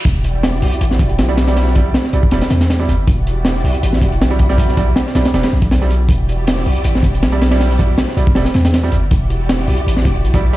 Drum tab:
HH |x-x-x-oxx-xxx-xx|x-x-x-x-xxxxx-x-|x-x-x-oxx-xxx-x-|x-x-x-xxxx-xx-x-|
SD |----oo---o--oooo|oo--oo--oooooo--|----oo---o--oo-o|-o--ooooooo-oo--|
BD |o---------o-----|--o----o--------|o---------o---o-|o-o--------o----|

HH |x-x-x-oxx-xxx-xx|x-x-x-x-xxxxx-x-|x-x-x-oxx-x-xx-x|
SD |----oo---o--oooo|oo--oo--oooooo--|----oo---o------|
BD |o---------o-----|--o----o--------|o---------o--o--|